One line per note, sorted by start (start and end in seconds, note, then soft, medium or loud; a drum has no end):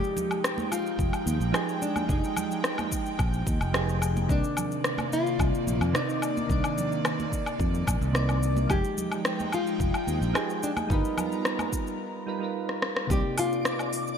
0.00 1.49 F3 medium
0.00 4.25 F3 medium
0.00 1.52 G#3 medium
0.00 4.25 G#3 medium
0.00 1.50 D#4 medium
0.00 4.25 D#4 medium
0.00 0.40 G4 loud
0.00 1.51 G4 medium
0.00 4.25 G5 medium
0.00 shaker soft
0.17 low conga medium
0.17 shaker medium
0.31 low woodblock medium
0.31 shaker soft
0.44 cross-stick loud
0.44 shaker soft
0.58 high conga loud
0.58 shaker soft
0.72 1.85 F4 loud
0.72 low woodblock medium
0.72 shaker medium
0.86 shaker soft
0.99 1.10 F1 medium
0.99 kick loud
0.99 shaker soft
1.13 low woodblock medium
1.13 shaker soft
1.26 1.38 D#2 medium
1.26 high conga medium
1.26 shaker medium
1.40 1.51 A#1 medium
1.40 shaker soft
1.52 2.05 F3 loud
1.52 2.05 D#4 medium
1.52 2.06 G4 medium
1.52 2.06 G#4 loud
1.52 cross-stick medium
1.52 low woodblock medium
1.52 shaker soft
1.69 shaker soft
1.82 2.09 D4 medium
1.82 shaker medium
1.96 high conga loud
1.96 low woodblock medium
1.96 shaker soft
2.06 2.20 F1 medium
2.06 3.70 F3 medium
2.06 3.71 D#4 medium
2.06 3.15 D#4 medium
2.06 3.71 G4 medium
2.06 kick loud
2.06 shaker soft
2.12 3.72 G#4 medium
2.24 shaker soft
2.37 low conga medium
2.37 low woodblock medium
2.37 shaker medium
2.51 shaker soft
2.64 cross-stick medium
2.64 shaker soft
2.78 high conga medium
2.78 low woodblock medium
2.78 shaker soft
2.92 kick medium
2.92 shaker medium
3.06 shaker soft
3.19 3.42 A#1 medium
3.19 kick loud
3.19 low woodblock medium
3.19 shaker soft
3.33 shaker soft
3.47 3.58 D#2 medium
3.47 kick loud
3.47 high conga medium
3.47 shaker medium
3.61 4.25 F1 loud
3.61 low woodblock medium
3.61 shaker soft
3.73 4.25 F3 medium
3.73 4.26 D#4 medium
3.73 4.26 G4 medium
3.73 4.27 G#4 loud
3.73 cross-stick medium
3.73 shaker soft
3.89 shaker soft
4.02 low woodblock medium
4.02 shaker medium
4.17 high conga medium
4.17 shaker soft
4.27 4.41 C2 medium
4.27 5.90 C3 medium
4.27 8.66 C3 medium
4.27 8.65 D#3 medium
4.27 5.92 D#3 medium
4.27 5.91 A#3 medium
4.27 8.66 A#3 medium
4.27 5.15 D4 loud
4.27 8.65 D5 medium
4.27 kick loud
4.27 shaker soft
4.32 5.93 D5 medium
4.44 shaker soft
4.57 low conga medium
4.57 low woodblock medium
4.57 shaker medium
4.72 shaker soft
4.84 cross-stick medium
4.84 shaker soft
4.98 high conga medium
4.98 low woodblock medium
4.98 shaker soft
5.13 5.98 F4 loud
5.13 shaker medium
5.27 shaker soft
5.39 5.51 C2 medium
5.39 kick loud
5.39 low woodblock medium
5.39 shaker soft
5.54 shaker soft
5.67 5.78 A#1 medium
5.67 high conga medium
5.67 shaker medium
5.81 5.92 F2 medium
5.81 low woodblock medium
5.81 shaker soft
5.93 6.46 C3 medium
5.93 6.46 A#3 medium
5.93 6.47 D#4 medium
5.93 6.37 D#4 medium
5.93 6.47 D5 loud
5.93 cross-stick medium
5.93 shaker soft
6.09 shaker soft
6.22 low woodblock medium
6.22 shaker medium
6.37 6.51 D4 medium
6.37 high conga medium
6.37 shaker soft
6.47 6.61 C2 medium
6.47 8.10 C3 medium
6.47 8.12 D#3 medium
6.47 8.11 A#3 medium
6.47 kick loud
6.47 shaker soft
6.51 7.02 D4 medium
6.51 8.13 D5 medium
6.64 low woodblock medium
6.64 shaker soft
6.78 low conga medium
6.78 shaker medium
6.92 shaker soft
7.05 cross-stick medium
7.05 low woodblock medium
7.05 shaker soft
7.19 high conga medium
7.19 shaker soft
7.32 kick medium
7.32 shaker medium
7.46 low woodblock medium
7.46 shaker soft
7.60 7.82 F2 medium
7.60 kick loud
7.60 shaker soft
7.74 shaker soft
7.87 7.99 A#1 medium
7.87 kick loud
7.87 high conga medium
7.87 low woodblock medium
7.87 shaker medium
8.01 8.66 C2 loud
8.01 shaker soft
8.13 8.66 C3 medium
8.13 8.66 A#3 medium
8.13 8.67 D#4 medium
8.13 8.67 D5 loud
8.13 cross-stick medium
8.13 shaker soft
8.29 low woodblock medium
8.29 shaker soft
8.43 shaker medium
8.57 high conga medium
8.57 shaker soft
8.67 8.81 F1 medium
8.67 10.30 F3 medium
8.67 10.87 F3 medium
8.67 10.87 G#3 medium
8.67 10.31 D#4 medium
8.67 11.96 D#4 medium
8.67 9.21 G4 loud
8.67 10.32 G4 medium
8.67 10.88 G5 medium
8.67 kick loud
8.67 low woodblock medium
8.67 shaker soft
8.73 10.33 G#3 medium
8.84 shaker soft
8.98 low conga medium
8.98 shaker medium
9.12 low woodblock medium
9.12 shaker soft
9.25 cross-stick loud
9.25 shaker soft
9.40 high conga medium
9.40 shaker soft
9.52 10.67 F4 loud
9.52 low woodblock medium
9.52 shaker medium
9.67 shaker soft
9.80 9.91 F1 medium
9.80 kick loud
9.80 shaker soft
9.94 low woodblock medium
9.94 shaker soft
10.07 10.19 D#2 medium
10.07 high conga medium
10.07 shaker medium
10.21 10.32 A#1 medium
10.21 shaker soft
10.34 10.86 F3 medium
10.34 10.86 D#4 medium
10.34 10.87 G4 medium
10.34 10.87 G#4 loud
10.34 cross-stick medium
10.34 low woodblock medium
10.34 shaker soft
10.50 shaker soft
10.63 10.71 D4 medium
10.63 shaker medium
10.77 high conga medium
10.77 low woodblock medium
10.77 shaker soft
10.87 11.01 G1 medium
10.87 12.23 G3 medium
10.87 11.99 G3 medium
10.87 11.99 B3 medium
10.87 12.24 D#4 medium
10.87 12.25 F4 medium
10.87 11.99 F4 medium
10.87 11.99 A#5 medium
10.87 kick loud
10.87 shaker soft
10.91 11.97 D#4 medium
10.91 12.25 A#4 medium
10.91 12.26 B4 loud
11.05 shaker soft
11.18 low conga medium
11.18 low woodblock medium
11.18 shaker medium
11.32 shaker soft
11.45 cross-stick medium
11.45 shaker soft
11.59 high conga medium
11.59 low woodblock medium
11.59 shaker soft
11.73 kick medium
11.73 shaker medium
11.87 shaker soft
12.26 12.38 G3 medium
12.26 12.38 D#4 medium
12.26 12.38 F4 medium
12.26 12.39 A#4 medium
12.26 12.39 B4 medium
12.39 13.05 G3 medium
12.39 13.06 D#4 medium
12.39 13.07 F4 medium
12.43 13.08 A#4 medium
12.43 13.08 B4 medium
12.69 cross-stick soft
12.82 cross-stick medium
12.97 cross-stick medium
13.07 13.21 C2 medium
13.07 14.18 C3 medium
13.07 14.18 A#3 medium
13.07 14.18 D#4 medium
13.07 14.18 D5 medium
13.07 14.18 D6 medium
13.07 kick loud
13.07 shaker soft
13.11 13.39 G4 loud
13.11 14.18 D5 medium
13.38 14.18 F4 medium
13.38 open hi-hat medium
13.38 low woodblock medium
13.38 shaker medium
13.52 shaker soft
13.65 cross-stick loud
13.65 shaker soft
13.79 low woodblock medium
13.79 shaker soft
13.93 open hi-hat medium
13.93 shaker medium
14.07 shaker soft